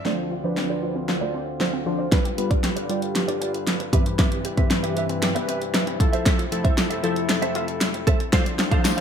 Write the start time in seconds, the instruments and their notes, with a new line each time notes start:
0.05 harmonium D2 D3 C4 F4, synth keys F3 D4 C5, synth arpeggio sound A3, clean electric guitar F4 C5 D5, snare
0.18 muted clean electric guitar stroke
0.31 synth arpeggio sound F4, muted clean electric guitar stroke
0.44 synth keys F3 D4 B4, clean electric guitar F4 C5 D5
0.57 synth arpeggio sound C4, snare
0.69 synth arpeggio sound F4, clean electric guitar F4 C5 D5
0.82 clean electric guitar F4 C5 D5
0.95 synth arpeggio sound C4, muted clean electric guitar stroke
1.08 synth arpeggio sound F4, muted clean electric guitar stroke, snare
1.21 synth arpeggio sound A3, clean electric guitar F4 C5 D5
1.34 synth arpeggio sound C4, clean electric guitar F4 C5 D5
1.47 muted clean electric guitar stroke
1.60 clean electric guitar F4 C5 D5, snare
1.73 synth arpeggio sound C4, muted clean electric guitar stroke
1.86 synth keys F3 D4 C5, synth arpeggio sound F4, muted clean electric guitar stroke
1.99 clean electric guitar F4 C5 D5
2.11 harmonium G2 D3 B4, synth keys G3 F4 B4, synth arpeggio sound D4, clean electric guitar F4 B4 D5, kick, snare, closed hi-hat
2.25 synth arpeggio sound G4, muted clean electric guitar stroke, closed hi-hat
2.38 synth keys G3 F4 B4, synth arpeggio sound B3, muted clean electric guitar stroke, closed hi-hat
2.50 synth arpeggio sound D4, clean electric guitar F4 B4 D5, kick, closed hi-hat
2.63 synth arpeggio sound G4, muted clean electric guitar stroke, snare, closed hi-hat
2.76 clean electric guitar F4 B4 D5, closed hi-hat
2.89 synth keys G3 F4 G4, clean electric guitar F4 B4 D5, closed hi-hat
3.02 muted clean electric guitar stroke, closed hi-hat
3.15 muted clean electric guitar stroke, snare, closed hi-hat
3.28 synth arpeggio sound D4, clean electric guitar F4 B4 D5, closed hi-hat
3.41 clean electric guitar F4 B4 D5, synth arpeggio sound G4, closed hi-hat
3.54 muted clean electric guitar stroke, closed hi-hat
3.67 snare, closed hi-hat
3.80 muted clean electric guitar stroke, closed hi-hat
3.93 synth keys G2 E3 C4 B4, harmonium G2 C3 E3, synth arpeggio sound B3, clean electric guitar G4 B4 E5, kick, closed hi-hat
4.06 synth arpeggio sound C4, muted clean electric guitar stroke, closed hi-hat
4.19 synth arpeggio sound B3, clean electric guitar G4 B4 E5, kick, snare, closed hi-hat
4.32 muted clean electric guitar stroke, closed hi-hat
4.45 synth arpeggio sound G4, muted clean electric guitar stroke, closed hi-hat
4.57 synth keys G2 E3 C4 B4, clean electric guitar G4 B4 E5, kick, closed hi-hat
4.71 synth arpeggio sound C4, muted clean electric guitar stroke, snare, closed hi-hat
4.83 synth arpeggio sound G4, clean electric guitar G4 B4 E5, closed hi-hat
4.96 clean electric guitar G4 B4 E5, closed hi-hat
5.09 synth arpeggio sound C4, muted clean electric guitar stroke, closed hi-hat
5.22 synth arpeggio sound G4, muted clean electric guitar stroke, snare, closed hi-hat
5.35 synth arpeggio sound B3, clean electric guitar G4 B4 E5, closed hi-hat
5.48 synth arpeggio sound C4, clean electric guitar G4 B4 E5, closed hi-hat
5.61 muted clean electric guitar stroke, closed hi-hat
5.74 clean electric guitar G4 B4 E5, snare, closed hi-hat
5.87 synth arpeggio sound C4, muted clean electric guitar stroke, closed hi-hat
6.00 harmonium F2 A3 E4, synth keys F3 E4 A4, synth arpeggio sound F4, muted clean electric guitar stroke, kick, closed hi-hat
6.13 clean electric guitar A4 C5 E5, closed hi-hat
6.25 synth arpeggio sound C4, clean electric guitar A4 C5 E5, kick, snare, closed hi-hat
6.38 synth arpeggio sound F4, muted clean electric guitar stroke, closed hi-hat
6.51 synth keys F3 E4 A4, synth arpeggio sound A3, muted clean electric guitar stroke, closed hi-hat
6.64 synth arpeggio sound C4, clean electric guitar A4 C5 E5, kick, closed hi-hat
6.78 synth arpeggio sound F4, muted clean electric guitar stroke, snare, closed hi-hat
6.90 clean electric guitar A4 C5 E5, closed hi-hat
7.03 synth keys F3 E4 A4, clean electric guitar A4 C5 E5, closed hi-hat
7.16 muted clean electric guitar stroke, closed hi-hat
7.29 muted clean electric guitar stroke, snare, closed hi-hat
7.42 synth arpeggio sound C4, clean electric guitar A4 C5 E5, closed hi-hat
7.55 synth arpeggio sound F4, clean electric guitar A4 C5 E5, closed hi-hat
7.68 muted clean electric guitar stroke, closed hi-hat
7.81 snare, closed hi-hat
7.94 muted clean electric guitar stroke, closed hi-hat
8.07 synth arpeggio sound A3, clean electric guitar A4 C5 E5, kick, closed hi-hat
8.20 synth arpeggio sound C4, muted clean electric guitar stroke, closed hi-hat
8.33 harmonium D2 D3 C4 F4, synth keys F3 D4 C5, synth arpeggio sound F3, clean electric guitar A4 C5 F5, kick, snare, closed hi-hat, riser
8.46 muted clean electric guitar stroke, closed hi-hat
8.59 synth arpeggio sound D4, muted clean electric guitar stroke, snare, closed hi-hat
8.71 synth keys F3 D4 C5, clean electric guitar A4 C5 F5, kick, closed hi-hat
8.85 synth arpeggio sound A3, muted clean electric guitar stroke, snare, closed hi-hat, tambourine
8.97 clean electric guitar F5